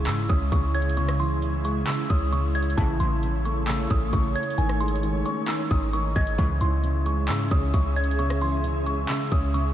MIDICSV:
0, 0, Header, 1, 8, 480
1, 0, Start_track
1, 0, Key_signature, 4, "minor"
1, 0, Tempo, 451128
1, 1033, Time_signature, 4, 2, 24, 8
1, 10360, End_track
2, 0, Start_track
2, 0, Title_t, "Synth bell"
2, 0, Program_c, 0, 98
2, 74, Note_on_c, 0, 88, 87
2, 290, Note_off_c, 0, 88, 0
2, 314, Note_on_c, 0, 87, 81
2, 530, Note_off_c, 0, 87, 0
2, 553, Note_on_c, 0, 85, 86
2, 769, Note_off_c, 0, 85, 0
2, 793, Note_on_c, 0, 92, 90
2, 1009, Note_off_c, 0, 92, 0
2, 1035, Note_on_c, 0, 85, 86
2, 1250, Note_off_c, 0, 85, 0
2, 1274, Note_on_c, 0, 84, 93
2, 1490, Note_off_c, 0, 84, 0
2, 1754, Note_on_c, 0, 85, 81
2, 1970, Note_off_c, 0, 85, 0
2, 1994, Note_on_c, 0, 88, 82
2, 2210, Note_off_c, 0, 88, 0
2, 2233, Note_on_c, 0, 87, 77
2, 2449, Note_off_c, 0, 87, 0
2, 2474, Note_on_c, 0, 85, 92
2, 2690, Note_off_c, 0, 85, 0
2, 2713, Note_on_c, 0, 92, 92
2, 2929, Note_off_c, 0, 92, 0
2, 2952, Note_on_c, 0, 81, 79
2, 3168, Note_off_c, 0, 81, 0
2, 3192, Note_on_c, 0, 84, 89
2, 3409, Note_off_c, 0, 84, 0
2, 3675, Note_on_c, 0, 85, 71
2, 3890, Note_off_c, 0, 85, 0
2, 3912, Note_on_c, 0, 88, 81
2, 4129, Note_off_c, 0, 88, 0
2, 4156, Note_on_c, 0, 87, 82
2, 4371, Note_off_c, 0, 87, 0
2, 4394, Note_on_c, 0, 85, 85
2, 4610, Note_off_c, 0, 85, 0
2, 4634, Note_on_c, 0, 92, 86
2, 4850, Note_off_c, 0, 92, 0
2, 4873, Note_on_c, 0, 80, 86
2, 5089, Note_off_c, 0, 80, 0
2, 5112, Note_on_c, 0, 84, 97
2, 5329, Note_off_c, 0, 84, 0
2, 5593, Note_on_c, 0, 85, 85
2, 5809, Note_off_c, 0, 85, 0
2, 5834, Note_on_c, 0, 88, 90
2, 6050, Note_off_c, 0, 88, 0
2, 6073, Note_on_c, 0, 87, 79
2, 6290, Note_off_c, 0, 87, 0
2, 6313, Note_on_c, 0, 85, 89
2, 6530, Note_off_c, 0, 85, 0
2, 6553, Note_on_c, 0, 92, 90
2, 6769, Note_off_c, 0, 92, 0
2, 6794, Note_on_c, 0, 85, 81
2, 7010, Note_off_c, 0, 85, 0
2, 7033, Note_on_c, 0, 84, 90
2, 7249, Note_off_c, 0, 84, 0
2, 7515, Note_on_c, 0, 85, 72
2, 7730, Note_off_c, 0, 85, 0
2, 7753, Note_on_c, 0, 88, 92
2, 7969, Note_off_c, 0, 88, 0
2, 7995, Note_on_c, 0, 87, 80
2, 8210, Note_off_c, 0, 87, 0
2, 8233, Note_on_c, 0, 85, 86
2, 8449, Note_off_c, 0, 85, 0
2, 8474, Note_on_c, 0, 92, 91
2, 8690, Note_off_c, 0, 92, 0
2, 8713, Note_on_c, 0, 85, 83
2, 8930, Note_off_c, 0, 85, 0
2, 8955, Note_on_c, 0, 84, 93
2, 9170, Note_off_c, 0, 84, 0
2, 9432, Note_on_c, 0, 85, 80
2, 9649, Note_off_c, 0, 85, 0
2, 9672, Note_on_c, 0, 88, 87
2, 9889, Note_off_c, 0, 88, 0
2, 9915, Note_on_c, 0, 87, 77
2, 10130, Note_off_c, 0, 87, 0
2, 10153, Note_on_c, 0, 85, 89
2, 10360, Note_off_c, 0, 85, 0
2, 10360, End_track
3, 0, Start_track
3, 0, Title_t, "Ambient pad"
3, 0, Program_c, 1, 92
3, 0, Note_on_c, 1, 49, 81
3, 0, Note_on_c, 1, 56, 75
3, 0, Note_on_c, 1, 64, 88
3, 2915, Note_off_c, 1, 56, 0
3, 2916, Note_off_c, 1, 49, 0
3, 2954, Note_on_c, 1, 73, 92
3, 2955, Note_on_c, 1, 57, 84
3, 4831, Note_off_c, 1, 64, 0
3, 4854, Note_off_c, 1, 57, 0
3, 4874, Note_on_c, 1, 56, 83
3, 4874, Note_on_c, 1, 63, 76
3, 6755, Note_off_c, 1, 73, 0
3, 6774, Note_off_c, 1, 56, 0
3, 6774, Note_off_c, 1, 63, 0
3, 6793, Note_on_c, 1, 61, 81
3, 6793, Note_on_c, 1, 68, 77
3, 6793, Note_on_c, 1, 76, 89
3, 10360, Note_off_c, 1, 61, 0
3, 10360, Note_off_c, 1, 68, 0
3, 10360, Note_off_c, 1, 76, 0
3, 10360, End_track
4, 0, Start_track
4, 0, Title_t, "Grand piano"
4, 0, Program_c, 2, 0
4, 0, Control_c, 2, 64, 127
4, 0, Note_on_c, 2, 49, 83
4, 0, Note_on_c, 2, 52, 84
4, 0, Note_on_c, 2, 56, 79
4, 74, Note_off_c, 2, 49, 0
4, 74, Note_on_c, 2, 49, 96
4, 313, Note_on_c, 2, 61, 91
4, 536, Note_off_c, 2, 49, 0
4, 551, Note_off_c, 2, 52, 0
4, 552, Note_on_c, 2, 49, 86
4, 795, Note_on_c, 2, 73, 91
4, 1016, Note_off_c, 2, 49, 0
4, 1031, Note_off_c, 2, 56, 0
4, 1032, Note_on_c, 2, 49, 104
4, 1271, Note_on_c, 2, 52, 88
4, 1497, Note_off_c, 2, 49, 0
4, 1513, Note_off_c, 2, 61, 0
4, 1513, Note_on_c, 2, 49, 81
4, 1749, Note_on_c, 2, 56, 85
4, 1980, Note_off_c, 2, 49, 0
4, 1994, Note_off_c, 2, 73, 0
4, 1996, Note_on_c, 2, 49, 96
4, 2231, Note_on_c, 2, 61, 82
4, 2457, Note_off_c, 2, 49, 0
4, 2472, Note_off_c, 2, 52, 0
4, 2473, Note_on_c, 2, 49, 77
4, 2714, Note_on_c, 2, 73, 94
4, 2937, Note_off_c, 2, 49, 0
4, 2951, Note_off_c, 2, 56, 0
4, 2952, Note_off_c, 2, 61, 0
4, 2953, Note_on_c, 2, 49, 94
4, 2954, Note_off_c, 2, 73, 0
4, 2964, Control_c, 2, 64, 0
4, 3149, Control_c, 2, 64, 127
4, 3191, Note_on_c, 2, 52, 81
4, 3421, Note_off_c, 2, 49, 0
4, 3437, Note_on_c, 2, 49, 80
4, 3677, Note_on_c, 2, 57, 79
4, 3904, Note_off_c, 2, 49, 0
4, 3920, Note_on_c, 2, 49, 97
4, 4152, Note_on_c, 2, 61, 85
4, 4379, Note_off_c, 2, 49, 0
4, 4392, Note_off_c, 2, 52, 0
4, 4395, Note_on_c, 2, 49, 92
4, 4630, Note_on_c, 2, 73, 87
4, 4871, Note_off_c, 2, 73, 0
4, 4872, Note_off_c, 2, 61, 0
4, 4873, Note_on_c, 2, 51, 93
4, 4874, Note_off_c, 2, 49, 0
4, 4875, Note_off_c, 2, 57, 0
4, 4887, Control_c, 2, 64, 0
4, 5074, Control_c, 2, 64, 127
4, 5115, Note_on_c, 2, 56, 82
4, 5339, Note_off_c, 2, 51, 0
4, 5355, Note_on_c, 2, 51, 84
4, 5595, Note_on_c, 2, 61, 81
4, 5817, Note_off_c, 2, 51, 0
4, 5833, Note_on_c, 2, 51, 95
4, 6077, Note_on_c, 2, 63, 81
4, 6303, Note_off_c, 2, 51, 0
4, 6314, Note_off_c, 2, 56, 0
4, 6319, Note_on_c, 2, 51, 84
4, 6551, Note_on_c, 2, 75, 91
4, 6792, Note_off_c, 2, 75, 0
4, 6794, Note_off_c, 2, 61, 0
4, 6794, Note_on_c, 2, 49, 95
4, 6795, Note_off_c, 2, 63, 0
4, 6796, Note_off_c, 2, 51, 0
4, 6807, Control_c, 2, 64, 0
4, 6987, Control_c, 2, 64, 127
4, 7028, Note_on_c, 2, 52, 84
4, 7254, Note_off_c, 2, 49, 0
4, 7270, Note_on_c, 2, 49, 82
4, 7507, Note_on_c, 2, 56, 83
4, 7736, Note_off_c, 2, 49, 0
4, 7752, Note_on_c, 2, 49, 91
4, 7991, Note_on_c, 2, 61, 87
4, 8215, Note_off_c, 2, 49, 0
4, 8230, Note_off_c, 2, 52, 0
4, 8231, Note_on_c, 2, 49, 82
4, 8473, Note_on_c, 2, 73, 91
4, 8697, Note_off_c, 2, 49, 0
4, 8710, Note_off_c, 2, 56, 0
4, 8713, Note_on_c, 2, 49, 104
4, 8951, Note_on_c, 2, 52, 86
4, 9176, Note_off_c, 2, 49, 0
4, 9192, Note_off_c, 2, 61, 0
4, 9192, Note_on_c, 2, 49, 83
4, 9430, Note_on_c, 2, 56, 84
4, 9660, Note_off_c, 2, 49, 0
4, 9673, Note_off_c, 2, 73, 0
4, 9676, Note_on_c, 2, 49, 93
4, 9912, Note_on_c, 2, 61, 84
4, 10136, Note_off_c, 2, 49, 0
4, 10152, Note_off_c, 2, 52, 0
4, 10152, Note_on_c, 2, 49, 79
4, 10360, Note_off_c, 2, 49, 0
4, 10360, Note_off_c, 2, 56, 0
4, 10360, Note_off_c, 2, 61, 0
4, 10360, End_track
5, 0, Start_track
5, 0, Title_t, "Analog polysynth"
5, 0, Program_c, 3, 90
5, 2953, Note_on_c, 3, 37, 99
5, 2953, Note_on_c, 3, 52, 112
5, 2954, Note_on_c, 3, 45, 103
5, 3295, Note_off_c, 3, 37, 0
5, 3295, Note_off_c, 3, 45, 0
5, 3295, Note_off_c, 3, 52, 0
5, 6792, Note_on_c, 3, 37, 90
5, 6792, Note_on_c, 3, 44, 101
5, 6792, Note_on_c, 3, 52, 108
5, 7134, Note_off_c, 3, 37, 0
5, 7134, Note_off_c, 3, 44, 0
5, 7134, Note_off_c, 3, 52, 0
5, 10360, End_track
6, 0, Start_track
6, 0, Title_t, "808-style bass"
6, 0, Program_c, 4, 38
6, 73, Note_on_c, 4, 44, 98
6, 301, Note_off_c, 4, 44, 0
6, 314, Note_on_c, 4, 37, 105
6, 544, Note_off_c, 4, 37, 0
6, 554, Note_on_c, 4, 37, 109
6, 1951, Note_off_c, 4, 37, 0
6, 2234, Note_on_c, 4, 37, 107
6, 2925, Note_off_c, 4, 37, 0
6, 2954, Note_on_c, 4, 33, 113
6, 3184, Note_off_c, 4, 33, 0
6, 3193, Note_on_c, 4, 33, 107
6, 4114, Note_off_c, 4, 33, 0
6, 4154, Note_on_c, 4, 33, 108
6, 4384, Note_off_c, 4, 33, 0
6, 4393, Note_on_c, 4, 33, 109
6, 4623, Note_off_c, 4, 33, 0
6, 4872, Note_on_c, 4, 32, 118
6, 5563, Note_off_c, 4, 32, 0
6, 6072, Note_on_c, 4, 32, 109
6, 6533, Note_off_c, 4, 32, 0
6, 6553, Note_on_c, 4, 32, 110
6, 6783, Note_off_c, 4, 32, 0
6, 6792, Note_on_c, 4, 37, 114
6, 7023, Note_off_c, 4, 37, 0
6, 7033, Note_on_c, 4, 37, 112
6, 7753, Note_on_c, 4, 44, 101
6, 7769, Note_off_c, 4, 37, 0
6, 7981, Note_off_c, 4, 44, 0
6, 7993, Note_on_c, 4, 37, 104
6, 8223, Note_off_c, 4, 37, 0
6, 8233, Note_on_c, 4, 37, 110
6, 9630, Note_off_c, 4, 37, 0
6, 9913, Note_on_c, 4, 37, 106
6, 10360, Note_off_c, 4, 37, 0
6, 10360, End_track
7, 0, Start_track
7, 0, Title_t, "Impact"
7, 0, Program_c, 5, 103
7, 0, Note_on_c, 5, 60, 87
7, 1033, Note_off_c, 5, 60, 0
7, 10360, End_track
8, 0, Start_track
8, 0, Title_t, "Drums"
8, 73, Note_on_c, 9, 39, 113
8, 75, Note_on_c, 9, 42, 80
8, 179, Note_off_c, 9, 39, 0
8, 182, Note_off_c, 9, 42, 0
8, 314, Note_on_c, 9, 36, 103
8, 314, Note_on_c, 9, 42, 78
8, 420, Note_off_c, 9, 36, 0
8, 421, Note_off_c, 9, 42, 0
8, 554, Note_on_c, 9, 36, 96
8, 555, Note_on_c, 9, 42, 82
8, 660, Note_off_c, 9, 36, 0
8, 661, Note_off_c, 9, 42, 0
8, 794, Note_on_c, 9, 42, 49
8, 873, Note_off_c, 9, 42, 0
8, 873, Note_on_c, 9, 42, 65
8, 952, Note_off_c, 9, 42, 0
8, 952, Note_on_c, 9, 42, 81
8, 1033, Note_off_c, 9, 42, 0
8, 1033, Note_on_c, 9, 42, 80
8, 1139, Note_off_c, 9, 42, 0
8, 1154, Note_on_c, 9, 37, 97
8, 1260, Note_off_c, 9, 37, 0
8, 1271, Note_on_c, 9, 46, 90
8, 1377, Note_off_c, 9, 46, 0
8, 1514, Note_on_c, 9, 42, 85
8, 1620, Note_off_c, 9, 42, 0
8, 1753, Note_on_c, 9, 42, 70
8, 1859, Note_off_c, 9, 42, 0
8, 1993, Note_on_c, 9, 39, 111
8, 1995, Note_on_c, 9, 42, 81
8, 2099, Note_off_c, 9, 39, 0
8, 2102, Note_off_c, 9, 42, 0
8, 2234, Note_on_c, 9, 36, 106
8, 2235, Note_on_c, 9, 42, 79
8, 2340, Note_off_c, 9, 36, 0
8, 2342, Note_off_c, 9, 42, 0
8, 2475, Note_on_c, 9, 42, 84
8, 2581, Note_off_c, 9, 42, 0
8, 2714, Note_on_c, 9, 42, 51
8, 2794, Note_off_c, 9, 42, 0
8, 2794, Note_on_c, 9, 42, 67
8, 2873, Note_off_c, 9, 42, 0
8, 2873, Note_on_c, 9, 42, 84
8, 2953, Note_on_c, 9, 36, 112
8, 2954, Note_off_c, 9, 42, 0
8, 2954, Note_on_c, 9, 42, 82
8, 3060, Note_off_c, 9, 36, 0
8, 3060, Note_off_c, 9, 42, 0
8, 3192, Note_on_c, 9, 42, 81
8, 3298, Note_off_c, 9, 42, 0
8, 3435, Note_on_c, 9, 42, 87
8, 3542, Note_off_c, 9, 42, 0
8, 3674, Note_on_c, 9, 42, 69
8, 3781, Note_off_c, 9, 42, 0
8, 3913, Note_on_c, 9, 39, 114
8, 3915, Note_on_c, 9, 42, 80
8, 4019, Note_off_c, 9, 39, 0
8, 4021, Note_off_c, 9, 42, 0
8, 4153, Note_on_c, 9, 36, 101
8, 4154, Note_on_c, 9, 42, 78
8, 4260, Note_off_c, 9, 36, 0
8, 4261, Note_off_c, 9, 42, 0
8, 4393, Note_on_c, 9, 36, 95
8, 4394, Note_on_c, 9, 42, 83
8, 4500, Note_off_c, 9, 36, 0
8, 4501, Note_off_c, 9, 42, 0
8, 4634, Note_on_c, 9, 42, 49
8, 4714, Note_off_c, 9, 42, 0
8, 4714, Note_on_c, 9, 42, 66
8, 4792, Note_off_c, 9, 42, 0
8, 4792, Note_on_c, 9, 42, 85
8, 4873, Note_off_c, 9, 42, 0
8, 4873, Note_on_c, 9, 42, 81
8, 4979, Note_off_c, 9, 42, 0
8, 4994, Note_on_c, 9, 37, 94
8, 5100, Note_off_c, 9, 37, 0
8, 5111, Note_on_c, 9, 46, 90
8, 5113, Note_on_c, 9, 42, 69
8, 5193, Note_off_c, 9, 42, 0
8, 5193, Note_on_c, 9, 42, 71
8, 5218, Note_off_c, 9, 46, 0
8, 5273, Note_off_c, 9, 42, 0
8, 5273, Note_on_c, 9, 42, 67
8, 5353, Note_off_c, 9, 42, 0
8, 5353, Note_on_c, 9, 42, 85
8, 5460, Note_off_c, 9, 42, 0
8, 5592, Note_on_c, 9, 42, 68
8, 5698, Note_off_c, 9, 42, 0
8, 5832, Note_on_c, 9, 39, 116
8, 5834, Note_on_c, 9, 42, 79
8, 5938, Note_off_c, 9, 39, 0
8, 5941, Note_off_c, 9, 42, 0
8, 6073, Note_on_c, 9, 36, 105
8, 6073, Note_on_c, 9, 42, 77
8, 6179, Note_off_c, 9, 36, 0
8, 6179, Note_off_c, 9, 42, 0
8, 6313, Note_on_c, 9, 42, 85
8, 6419, Note_off_c, 9, 42, 0
8, 6551, Note_on_c, 9, 42, 47
8, 6553, Note_on_c, 9, 36, 94
8, 6658, Note_off_c, 9, 42, 0
8, 6660, Note_off_c, 9, 36, 0
8, 6671, Note_on_c, 9, 42, 82
8, 6778, Note_off_c, 9, 42, 0
8, 6792, Note_on_c, 9, 36, 110
8, 6792, Note_on_c, 9, 42, 81
8, 6898, Note_off_c, 9, 42, 0
8, 6899, Note_off_c, 9, 36, 0
8, 7031, Note_on_c, 9, 42, 81
8, 7137, Note_off_c, 9, 42, 0
8, 7274, Note_on_c, 9, 42, 84
8, 7380, Note_off_c, 9, 42, 0
8, 7511, Note_on_c, 9, 42, 71
8, 7618, Note_off_c, 9, 42, 0
8, 7752, Note_on_c, 9, 39, 114
8, 7754, Note_on_c, 9, 42, 81
8, 7858, Note_off_c, 9, 39, 0
8, 7861, Note_off_c, 9, 42, 0
8, 7992, Note_on_c, 9, 36, 103
8, 7994, Note_on_c, 9, 42, 78
8, 8099, Note_off_c, 9, 36, 0
8, 8100, Note_off_c, 9, 42, 0
8, 8233, Note_on_c, 9, 36, 94
8, 8234, Note_on_c, 9, 42, 80
8, 8339, Note_off_c, 9, 36, 0
8, 8340, Note_off_c, 9, 42, 0
8, 8473, Note_on_c, 9, 42, 51
8, 8553, Note_off_c, 9, 42, 0
8, 8553, Note_on_c, 9, 42, 65
8, 8632, Note_off_c, 9, 42, 0
8, 8632, Note_on_c, 9, 42, 80
8, 8714, Note_off_c, 9, 42, 0
8, 8714, Note_on_c, 9, 42, 80
8, 8820, Note_off_c, 9, 42, 0
8, 8833, Note_on_c, 9, 37, 97
8, 8940, Note_off_c, 9, 37, 0
8, 8950, Note_on_c, 9, 46, 86
8, 9056, Note_off_c, 9, 46, 0
8, 9193, Note_on_c, 9, 42, 85
8, 9299, Note_off_c, 9, 42, 0
8, 9432, Note_on_c, 9, 42, 70
8, 9538, Note_off_c, 9, 42, 0
8, 9672, Note_on_c, 9, 39, 111
8, 9674, Note_on_c, 9, 42, 79
8, 9778, Note_off_c, 9, 39, 0
8, 9781, Note_off_c, 9, 42, 0
8, 9913, Note_on_c, 9, 36, 102
8, 9914, Note_on_c, 9, 42, 78
8, 10019, Note_off_c, 9, 36, 0
8, 10021, Note_off_c, 9, 42, 0
8, 10154, Note_on_c, 9, 42, 84
8, 10261, Note_off_c, 9, 42, 0
8, 10360, End_track
0, 0, End_of_file